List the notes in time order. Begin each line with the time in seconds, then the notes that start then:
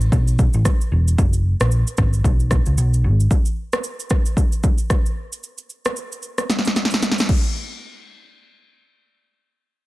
0.01 shaker
0.12 B1, kick, shaker
0.28 shaker
0.39 kick, shaker
0.53 A1, shaker
0.65 kick, cross-stick, shaker
0.81 shaker
0.92 E1
1.08 shaker
1.18 F#1, kick, shaker
1.33 shaker
1.60 A#1, cross-stick, shaker
1.71 shaker
1.87 shaker
1.97 G#1, kick, cross-stick, shaker
2.13 shaker
2.24 B1, kick, shaker
2.40 shaker
2.51 kick, cross-stick, shaker
2.66 C#2, shaker
2.78 B1, shaker
2.94 shaker
3.04 G#1
3.20 shaker
3.31 kick, shaker
3.45 shaker
3.73 cross-stick, shaker
3.84 shaker
4.00 shaker
4.10 kick, cross-stick, shaker
4.26 shaker
4.37 kick, shaker
4.52 shaker
4.63 kick, shaker
4.78 shaker
4.90 kick, cross-stick, shaker
5.06 shaker
5.32 shaker
5.43 shaker
5.58 shaker
5.70 shaker
5.85 cross-stick, shaker
5.96 shaker
6.12 shaker
6.22 shaker
6.38 cross-stick, shaker
6.50 snare, shaker
6.59 snare
6.65 snare, shaker
6.76 snare, shaker
6.85 snare
6.91 snare, shaker
7.03 snare, shaker
7.12 snare
7.18 snare, shaker
7.29 kick, crash